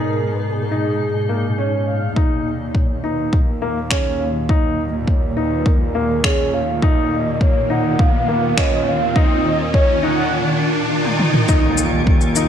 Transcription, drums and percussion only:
2.16 kick medium
2.75 kick medium
3.33 kick loud
3.91 finger snap medium
3.91 kick medium
4.49 kick medium
5.08 kick medium
5.66 kick loud
6.24 finger snap medium
6.24 kick loud
6.82 kick loud
7.41 kick loud
7.99 kick loud
8.58 finger snap medium
8.58 kick loud
9.16 kick loud
9.74 kick loud
11.05 high tom soft
11.19 mid tom medium
11.34 mid tom medium
11.48 kick loud
11.48 shaker soft
11.78 shaker medium
12.07 kick loud
12.21 shaker soft
12.36 shaker medium

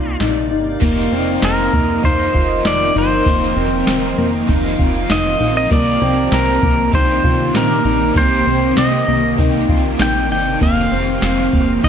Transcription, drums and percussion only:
0.20 snare loud
0.20 closed hi-hat medium
0.81 kick loud
0.81 crash loud
0.81 ride medium
1.42 snare loud
1.42 ride medium
1.42 tambourine medium
1.73 kick loud
2.04 kick loud
2.04 ride medium
2.35 kick loud
2.65 snare loud
2.65 ride medium
2.65 tambourine medium
3.26 kick loud
3.26 ride medium
3.87 snare loud
3.87 ride medium
3.87 tambourine medium
4.49 kick loud
4.49 ride medium
4.79 kick loud
5.10 snare loud
5.10 ride medium
5.10 tambourine medium
5.71 kick loud
5.71 ride medium
6.32 snare loud
6.32 ride medium
6.32 tambourine medium
6.63 kick medium
6.93 kick loud
6.93 ride medium
7.24 kick loud
7.55 snare loud
7.55 ride medium
7.55 tambourine medium
8.16 kick loud
8.16 ride medium
8.77 snare loud
8.77 ride medium
8.77 tambourine medium
9.38 kick loud
9.38 ride medium
9.69 kick loud
9.99 snare loud
9.99 ride medium
9.99 tambourine medium
10.61 kick loud
10.61 ride medium
11.22 snare loud
11.22 ride medium
11.22 tambourine medium
11.53 kick loud
11.84 kick loud
11.84 ride medium

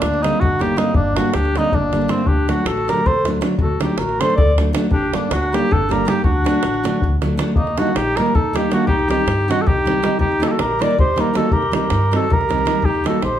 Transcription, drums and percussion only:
0.02 davul high medium
0.14 davul high soft
0.24 davul high medium
0.33 davul high soft
0.42 davul low medium
0.61 davul high medium
0.78 davul high medium
0.94 davul low medium
1.16 davul high medium
1.25 davul high soft
1.34 davul high medium
1.45 davul high soft
1.56 davul high medium
1.65 davul high soft
1.72 davul low medium
1.93 davul high medium
2.02 davul high soft
2.09 davul high medium
2.18 davul high soft
2.26 davul low medium
2.49 davul high medium
2.66 davul high medium
2.77 davul high soft
2.89 davul high medium
3.06 davul low medium
3.25 davul high medium
3.42 davul high medium
3.58 davul low medium
3.81 davul high medium
3.98 davul high medium
4.09 davul high soft
4.21 davul high medium
4.30 davul high soft
4.38 davul low loud
4.58 davul high medium
4.75 davul high medium
4.91 davul low medium
5.14 davul high medium
5.31 davul high medium
5.43 davul high soft
5.54 davul high medium
5.72 davul low medium
5.91 davul high medium
6.08 davul high medium
6.24 davul low medium
6.46 davul high medium
6.54 davul high soft
6.63 davul high medium
6.74 davul high soft
6.85 davul high medium
7.02 davul low medium
7.22 davul high medium
7.39 davul high medium
7.48 davul high soft
7.56 davul low medium
7.67 davul high soft
7.78 davul high medium
7.87 davul high soft
7.96 davul high medium
8.17 davul high medium
8.26 davul high soft
8.35 davul low medium
8.56 davul high medium
8.72 davul high medium
8.88 davul low medium
8.99 davul high soft
9.11 davul high medium
9.19 davul high soft
9.28 davul high medium
9.51 davul high medium
9.59 davul high soft
9.67 davul low medium
9.87 davul high medium
10.04 davul high medium
10.21 davul low medium
10.32 davul high soft
10.43 davul high medium
10.51 davul high soft
10.59 davul high medium
10.82 davul high medium
10.91 davul high soft
10.99 davul low medium
11.18 davul high medium
11.35 davul high medium
11.51 davul low medium
11.62 davul high soft
11.73 davul high medium
11.90 davul high medium
12.13 davul high medium
12.31 davul low medium
12.41 davul high soft
12.51 davul high medium
12.59 davul high soft
12.67 davul high medium
12.75 davul high soft
12.83 davul low medium
12.95 davul high soft
13.06 davul high medium
13.14 davul high soft
13.22 davul high medium

